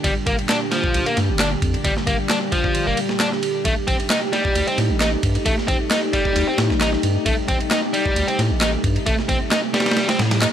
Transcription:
0.00 3.61 A#2 medium
0.00 3.61 D3 medium
0.00 10.53 G3 medium
0.00 3.61 D4 medium
0.00 10.53 G4 medium
0.04 0.12 G1 loud
0.04 0.12 G3 medium
0.04 kick loud
0.04 ride medium
0.27 0.34 G1 medium
0.27 0.34 A#3 medium
0.27 kick medium
0.27 ride medium
0.39 ride soft
0.49 0.57 D4 loud
0.49 snare loud
0.49 clap loud
0.49 ride medium
0.72 1.05 F3 medium
0.72 snare medium
0.72 ride medium
0.84 kick medium
0.94 1.02 C2 medium
0.94 ride medium
1.06 1.16 A#3 medium
1.06 ride soft
1.17 1.31 G2 medium
1.17 snare soft
1.17 ride medium
1.29 1.56 G1 medium
1.39 1.47 D4 loud
1.39 snare loud
1.39 clap loud
1.39 ride medium
1.62 1.77 F2 medium
1.62 kick loud
1.62 ride medium
1.74 ride soft
1.85 1.92 G1 loud
1.85 1.92 G3 medium
1.85 kick loud
1.85 ride medium
1.97 snare soft
2.07 2.15 G1 medium
2.07 2.15 A#3 loud
2.07 kick medium
2.07 ride medium
2.29 2.37 D4 medium
2.29 snare loud
2.29 clap loud
2.29 ride medium
2.52 2.86 F3 medium
2.52 kick medium
2.52 ride medium
2.64 kick medium
2.75 ride medium
2.87 2.93 G1 medium
2.87 2.97 A#3 medium
2.97 ride medium
3.09 snare soft
3.20 3.28 D4 loud
3.20 snare loud
3.20 clap loud
3.20 ride medium
3.32 snare soft
3.43 ride medium
3.65 3.73 A1 loud
3.65 10.53 C3 medium
3.65 3.73 A3 medium
3.65 10.53 A3 medium
3.65 10.53 D#4 medium
3.65 kick loud
3.65 ride medium
3.87 3.95 A1 medium
3.87 3.95 C4 medium
3.87 kick loud
3.87 ride medium
4.00 ride soft
4.10 4.18 D#4 medium
4.10 snare loud
4.10 clap loud
4.10 ride medium
4.33 4.66 G3 medium
4.33 snare medium
4.33 ride medium
4.45 kick medium
4.55 4.63 D2 medium
4.55 ride medium
4.67 4.77 C4 medium
4.67 ride soft
4.78 4.91 A2 medium
4.78 snare soft
4.78 ride medium
4.90 5.16 A1 medium
5.00 5.08 D#4 loud
5.00 snare loud
5.00 clap loud
5.00 ride medium
5.23 5.38 G2 medium
5.23 kick medium
5.23 ride medium
5.35 ride soft
5.46 5.53 A1 loud
5.46 5.53 A3 medium
5.46 kick loud
5.46 ride medium
5.58 snare soft
5.68 5.76 A1 medium
5.68 5.76 C4 medium
5.68 kick loud
5.68 ride medium
5.91 5.98 D#4 medium
5.91 snare loud
5.91 clap loud
5.91 ride medium
6.13 6.47 G3 medium
6.13 kick loud
6.13 ride medium
6.25 kick medium
6.36 6.43 D2 medium
6.36 ride medium
6.47 6.58 C4 medium
6.58 6.72 A2 medium
6.58 snare loud
6.58 ride medium
6.70 6.97 A1 medium
6.70 snare soft
6.81 6.88 D#4 loud
6.81 snare loud
6.81 clap loud
6.81 ride medium
6.93 snare soft
7.03 7.18 G2 medium
7.03 ride medium
7.26 7.33 A1 loud
7.26 7.33 A3 medium
7.26 kick loud
7.26 ride medium
7.48 7.56 A1 medium
7.48 7.56 C4 loud
7.48 kick loud
7.48 ride medium
7.61 ride soft
7.71 7.78 D#4 medium
7.71 snare loud
7.71 clap loud
7.71 ride medium
7.93 8.27 G3 medium
7.93 ride medium
8.06 kick medium
8.16 8.23 D2 medium
8.16 ride medium
8.28 8.38 C4 medium
8.28 ride soft
8.39 8.52 A2 medium
8.39 snare soft
8.39 ride medium
8.50 8.77 A1 medium
8.61 8.69 D#4 loud
8.61 snare loud
8.61 clap loud
8.61 ride medium
8.84 8.98 G2 medium
8.84 kick loud
8.84 ride medium
8.96 ride soft
9.06 9.14 A1 loud
9.06 9.14 A3 medium
9.06 kick loud
9.06 ride medium
9.19 snare soft
9.29 9.36 A1 medium
9.29 9.36 C4 loud
9.29 kick loud
9.29 ride medium
9.51 9.59 D#4 medium
9.51 snare loud
9.51 clap loud
9.51 ride medium
9.74 10.07 G3 medium
9.74 snare medium
9.74 ride medium
9.80 snare medium
9.80 ride medium
9.86 snare medium
9.86 ride medium
9.91 snare medium
9.91 ride medium
9.97 snare loud
9.97 ride medium
10.08 10.18 C4 medium
10.08 snare loud
10.08 ride medium
10.19 10.46 A2 medium
10.19 snare loud
10.19 ride medium
10.31 snare loud
10.31 ride medium
10.42 10.46 D#4 medium
10.42 snare loud
10.42 clap loud
10.42 ride medium

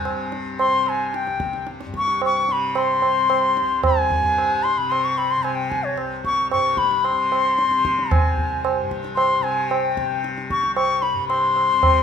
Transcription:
0.00 1.28 C2 medium
0.00 1.86 G2 medium
0.00 0.09 C3 medium
0.00 0.28 G#5 medium
0.05 0.67 C3 medium
0.05 tabla na medium
0.32 tabla te medium
0.59 0.90 C6 medium
0.59 tabla na medium
0.67 2.44 C3 medium
0.86 1.17 G#5 medium
0.86 tabla na medium
1.14 1.69 G5 medium
1.14 tabla te medium
1.27 3.61 C2 medium
1.27 tabla te medium
1.40 tabla ke medium
1.53 tabla te medium
1.67 tabla te medium
1.81 tabla te medium
1.86 4.19 G2 medium
1.94 2.21 C#6 medium
1.94 tabla ke medium
2.08 tabla te medium
2.22 2.54 C#6 medium
2.22 tabla na medium
2.44 3.02 C3 medium
2.49 2.79 B5 medium
2.49 tabla te medium
2.75 3.84 C6 loud
2.75 tabla na medium
3.02 4.78 C3 medium
3.02 tabla na medium
3.30 tabla na medium
3.57 tabla te medium
3.62 5.95 C2 medium
3.83 4.65 G#5 medium
3.83 tabla na loud
3.83 tabla ge medium
4.10 tabla ge medium
4.19 6.52 G2 medium
4.38 tabla na medium
4.63 4.79 C6 medium
4.63 tabla te medium
4.78 5.38 C3 medium
4.78 4.92 B5 medium
4.91 5.06 C6 medium
4.91 tabla na medium
5.05 5.19 C#6 medium
5.18 5.32 B5 medium
5.18 tabla na medium
5.31 5.44 C6 medium
5.38 7.12 C3 medium
5.43 5.56 G#5 medium
5.43 tabla na medium
5.55 5.71 G5 medium
5.70 5.85 G#5 medium
5.70 tabla ke medium
5.84 5.97 C#5 medium
5.96 8.25 C2 medium
5.96 tabla na medium
6.25 6.50 C#6 medium
6.25 tabla ke medium
6.51 8.81 G2 medium
6.51 6.80 C#6 loud
6.51 tabla na medium
6.77 7.07 B5 medium
6.77 tabla ke medium
6.91 tabla te medium
7.04 8.12 C6 medium
7.04 tabla na medium
7.12 7.68 C3 medium
7.32 tabla na medium
7.58 tabla te medium
7.68 9.40 C3 medium
7.68 tabla te medium
7.85 tabla ke medium
7.99 tabla te medium
8.11 8.91 G#5 medium
8.11 tabla na loud
8.11 tabla ge medium
8.25 10.56 C2 medium
8.38 tabla ge medium
8.65 tabla na medium
8.81 11.13 G2 medium
8.91 tabla ke medium
9.04 tabla te medium
9.16 9.44 C6 medium
9.16 tabla na medium
9.40 9.99 C3 medium
9.40 9.71 G#5 medium
9.44 tabla na medium
9.69 10.23 G5 medium
9.69 tabla na medium
9.97 11.72 C3 medium
9.97 tabla ke medium
10.24 tabla te medium
10.38 tabla te medium
10.50 10.75 C#6 medium
10.50 tabla ke medium
10.56 12.03 C2 medium
10.63 tabla te medium
10.75 11.04 C#6 loud
10.75 tabla na medium
11.02 11.28 B5 medium
11.02 tabla te medium
11.14 12.03 G2 medium
11.28 12.03 C6 loud
11.28 tabla na medium
11.56 tabla na medium
11.72 12.03 C3 medium
11.83 tabla na medium
11.83 tabla ge medium

